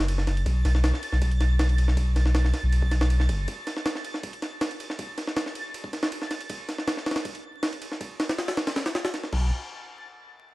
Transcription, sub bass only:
0, 0, Header, 1, 2, 480
1, 0, Start_track
1, 0, Tempo, 377358
1, 585, Time_signature, 4, 2, 24, 8
1, 13411, End_track
2, 0, Start_track
2, 0, Title_t, "Sub bass"
2, 0, Program_c, 0, 38
2, 0, Note_on_c, 0, 30, 95
2, 327, Note_off_c, 0, 30, 0
2, 347, Note_on_c, 0, 30, 91
2, 563, Note_off_c, 0, 30, 0
2, 587, Note_on_c, 0, 35, 97
2, 803, Note_off_c, 0, 35, 0
2, 827, Note_on_c, 0, 35, 82
2, 1170, Note_off_c, 0, 35, 0
2, 1430, Note_on_c, 0, 35, 80
2, 3207, Note_off_c, 0, 35, 0
2, 3348, Note_on_c, 0, 35, 79
2, 4185, Note_on_c, 0, 30, 77
2, 4204, Note_off_c, 0, 35, 0
2, 4402, Note_off_c, 0, 30, 0
2, 11865, Note_on_c, 0, 35, 93
2, 12088, Note_off_c, 0, 35, 0
2, 13411, End_track
0, 0, End_of_file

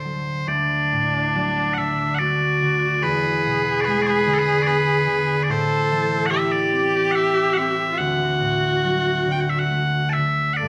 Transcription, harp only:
0, 0, Header, 1, 2, 480
1, 0, Start_track
1, 0, Tempo, 855920
1, 273, Time_signature, 3, 2, 24, 8
1, 1707, Tempo, 817439
1, 3627, Tempo, 835655
1, 5067, Tempo, 881057
1, 6080, End_track
2, 0, Start_track
2, 0, Title_t, "Harp"
2, 0, Program_c, 0, 46
2, 0, Note_on_c, 0, 38, 42
2, 0, Note_on_c, 0, 50, 33
2, 28, Note_on_c, 0, 54, 33
2, 260, Note_off_c, 0, 38, 0
2, 267, Note_on_c, 0, 38, 53
2, 301, Note_off_c, 0, 50, 0
2, 301, Note_off_c, 0, 54, 0
2, 518, Note_on_c, 0, 45, 45
2, 759, Note_on_c, 0, 54, 48
2, 1000, Note_on_c, 0, 50, 44
2, 1026, Note_off_c, 0, 45, 0
2, 1027, Note_off_c, 0, 54, 0
2, 1236, Note_on_c, 0, 57, 48
2, 1466, Note_off_c, 0, 50, 0
2, 1472, Note_on_c, 0, 50, 48
2, 1701, Note_on_c, 0, 40, 59
2, 1736, Note_off_c, 0, 38, 0
2, 1736, Note_off_c, 0, 50, 0
2, 1953, Note_on_c, 0, 47, 46
2, 2193, Note_on_c, 0, 56, 47
2, 2228, Note_off_c, 0, 57, 0
2, 2423, Note_on_c, 0, 50, 51
2, 2457, Note_off_c, 0, 47, 0
2, 2457, Note_off_c, 0, 56, 0
2, 2663, Note_on_c, 0, 59, 55
2, 2891, Note_off_c, 0, 50, 0
2, 2898, Note_on_c, 0, 50, 56
2, 3144, Note_on_c, 0, 45, 67
2, 3177, Note_off_c, 0, 40, 0
2, 3177, Note_off_c, 0, 50, 0
2, 3390, Note_on_c, 0, 52, 52
2, 3632, Note_on_c, 0, 64, 50
2, 3861, Note_on_c, 0, 60, 53
2, 3896, Note_off_c, 0, 59, 0
2, 4115, Note_on_c, 0, 69, 57
2, 4353, Note_off_c, 0, 60, 0
2, 4356, Note_on_c, 0, 60, 55
2, 4594, Note_on_c, 0, 38, 63
2, 4614, Note_off_c, 0, 45, 0
2, 4614, Note_off_c, 0, 52, 0
2, 4828, Note_on_c, 0, 45, 51
2, 5079, Note_on_c, 0, 54, 50
2, 5129, Note_off_c, 0, 64, 0
2, 5309, Note_on_c, 0, 50, 44
2, 5331, Note_off_c, 0, 45, 0
2, 5331, Note_off_c, 0, 54, 0
2, 5361, Note_off_c, 0, 69, 0
2, 5551, Note_on_c, 0, 57, 49
2, 5799, Note_off_c, 0, 50, 0
2, 5805, Note_on_c, 0, 50, 46
2, 6027, Note_off_c, 0, 60, 0
2, 6044, Note_on_c, 0, 43, 52
2, 6055, Note_off_c, 0, 38, 0
2, 6055, Note_off_c, 0, 50, 0
2, 6080, Note_off_c, 0, 43, 0
2, 6080, Note_off_c, 0, 57, 0
2, 6080, End_track
0, 0, End_of_file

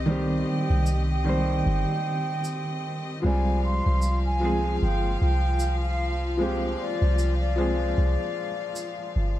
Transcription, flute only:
0, 0, Header, 1, 2, 480
1, 0, Start_track
1, 0, Tempo, 789474
1, 45, Time_signature, 4, 2, 24, 8
1, 5712, End_track
2, 0, Start_track
2, 0, Title_t, "Flute"
2, 0, Program_c, 0, 73
2, 282, Note_on_c, 0, 79, 90
2, 619, Note_off_c, 0, 79, 0
2, 666, Note_on_c, 0, 79, 94
2, 1884, Note_off_c, 0, 79, 0
2, 1972, Note_on_c, 0, 80, 102
2, 2187, Note_off_c, 0, 80, 0
2, 2210, Note_on_c, 0, 84, 94
2, 2543, Note_off_c, 0, 84, 0
2, 2582, Note_on_c, 0, 80, 95
2, 2894, Note_off_c, 0, 80, 0
2, 2930, Note_on_c, 0, 79, 94
2, 3147, Note_off_c, 0, 79, 0
2, 3161, Note_on_c, 0, 79, 91
2, 3498, Note_off_c, 0, 79, 0
2, 3538, Note_on_c, 0, 77, 92
2, 3852, Note_off_c, 0, 77, 0
2, 4128, Note_on_c, 0, 74, 95
2, 4462, Note_off_c, 0, 74, 0
2, 4498, Note_on_c, 0, 74, 96
2, 5712, Note_off_c, 0, 74, 0
2, 5712, End_track
0, 0, End_of_file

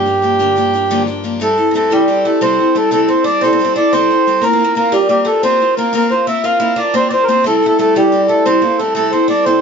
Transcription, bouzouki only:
0, 0, Header, 1, 2, 480
1, 0, Start_track
1, 0, Tempo, 335383
1, 2018, Time_signature, 9, 3, 24, 8
1, 13760, End_track
2, 0, Start_track
2, 0, Title_t, "Bouzouki"
2, 0, Program_c, 0, 25
2, 2023, Note_on_c, 0, 57, 61
2, 2411, Note_off_c, 0, 57, 0
2, 2449, Note_on_c, 0, 58, 53
2, 2503, Note_off_c, 0, 58, 0
2, 2514, Note_on_c, 0, 57, 73
2, 2753, Note_off_c, 0, 57, 0
2, 2753, Note_on_c, 0, 55, 70
2, 3192, Note_off_c, 0, 55, 0
2, 3223, Note_on_c, 0, 57, 75
2, 3444, Note_off_c, 0, 57, 0
2, 3460, Note_on_c, 0, 60, 79
2, 3940, Note_off_c, 0, 60, 0
2, 3946, Note_on_c, 0, 57, 64
2, 4148, Note_off_c, 0, 57, 0
2, 4165, Note_on_c, 0, 57, 65
2, 4394, Note_off_c, 0, 57, 0
2, 4415, Note_on_c, 0, 60, 70
2, 4640, Note_off_c, 0, 60, 0
2, 4641, Note_on_c, 0, 62, 81
2, 4883, Note_on_c, 0, 60, 78
2, 4897, Note_off_c, 0, 62, 0
2, 5031, Note_off_c, 0, 60, 0
2, 5049, Note_on_c, 0, 60, 73
2, 5202, Note_off_c, 0, 60, 0
2, 5220, Note_on_c, 0, 60, 77
2, 5367, Note_off_c, 0, 60, 0
2, 5380, Note_on_c, 0, 62, 80
2, 5602, Note_off_c, 0, 62, 0
2, 5620, Note_on_c, 0, 60, 82
2, 6289, Note_off_c, 0, 60, 0
2, 6319, Note_on_c, 0, 58, 71
2, 6469, Note_off_c, 0, 58, 0
2, 6486, Note_on_c, 0, 58, 61
2, 6631, Note_off_c, 0, 58, 0
2, 6648, Note_on_c, 0, 58, 80
2, 6801, Note_off_c, 0, 58, 0
2, 6825, Note_on_c, 0, 58, 77
2, 7042, Note_on_c, 0, 55, 78
2, 7045, Note_off_c, 0, 58, 0
2, 7272, Note_off_c, 0, 55, 0
2, 7290, Note_on_c, 0, 55, 70
2, 7511, Note_on_c, 0, 57, 84
2, 7517, Note_off_c, 0, 55, 0
2, 7770, Note_off_c, 0, 57, 0
2, 7776, Note_on_c, 0, 60, 88
2, 8223, Note_off_c, 0, 60, 0
2, 8279, Note_on_c, 0, 58, 77
2, 8499, Note_off_c, 0, 58, 0
2, 8516, Note_on_c, 0, 58, 68
2, 8953, Note_off_c, 0, 58, 0
2, 8975, Note_on_c, 0, 64, 85
2, 9199, Note_off_c, 0, 64, 0
2, 9219, Note_on_c, 0, 65, 85
2, 9436, Note_off_c, 0, 65, 0
2, 9442, Note_on_c, 0, 64, 85
2, 9671, Note_off_c, 0, 64, 0
2, 9677, Note_on_c, 0, 62, 82
2, 9931, Note_on_c, 0, 60, 81
2, 9934, Note_off_c, 0, 62, 0
2, 10152, Note_off_c, 0, 60, 0
2, 10169, Note_on_c, 0, 60, 66
2, 10411, Note_off_c, 0, 60, 0
2, 10428, Note_on_c, 0, 60, 70
2, 10645, Note_off_c, 0, 60, 0
2, 10652, Note_on_c, 0, 57, 72
2, 10802, Note_off_c, 0, 57, 0
2, 10963, Note_on_c, 0, 57, 69
2, 11118, Note_off_c, 0, 57, 0
2, 11153, Note_on_c, 0, 57, 80
2, 11391, Note_off_c, 0, 57, 0
2, 11394, Note_on_c, 0, 55, 70
2, 11869, Note_on_c, 0, 57, 74
2, 11879, Note_off_c, 0, 55, 0
2, 12085, Note_off_c, 0, 57, 0
2, 12102, Note_on_c, 0, 60, 81
2, 12321, Note_off_c, 0, 60, 0
2, 12335, Note_on_c, 0, 58, 75
2, 12558, Note_off_c, 0, 58, 0
2, 12587, Note_on_c, 0, 57, 70
2, 12789, Note_off_c, 0, 57, 0
2, 12807, Note_on_c, 0, 57, 74
2, 13033, Note_off_c, 0, 57, 0
2, 13064, Note_on_c, 0, 60, 70
2, 13281, Note_on_c, 0, 62, 78
2, 13283, Note_off_c, 0, 60, 0
2, 13510, Note_off_c, 0, 62, 0
2, 13544, Note_on_c, 0, 60, 77
2, 13760, Note_off_c, 0, 60, 0
2, 13760, End_track
0, 0, End_of_file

